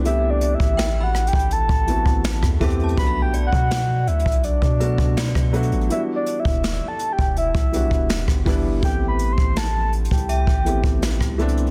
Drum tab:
HH |x-----------x-----------x-----------x---x---x---x-----------x-----------x-----------x--x--x--x--|x-----------x-----------x-----------x---x---x---x-----------x-----------x-----------x--x--x--x--|x-----------x-----------x-----------x-----------x-----------x-----------x-----------o-----------|x-----------x-----------x-----------x---x---x---x-----------x-----------x-----------x--x--x--x--|
SD |------------------------o-----------r-----------------------------------o-----r-----------------|------------------------o-----------------------------------------------o-----r-----------------|------------------------o-----------------------------------------------o-----r-----------------|------------------------o-----------------------------------------------o-----r-----------------|
BD |------------------o-----------------------o-----------o-----------o-----------o-----o-----------|o-----------------o-----------------------o-----------o-----------o-----------o-----------------|------------------o-----------------------o-----------o-----------o-----------o-----o-----------|o-----------------o-----------------------o-----------o-----------o-----------o-----------------|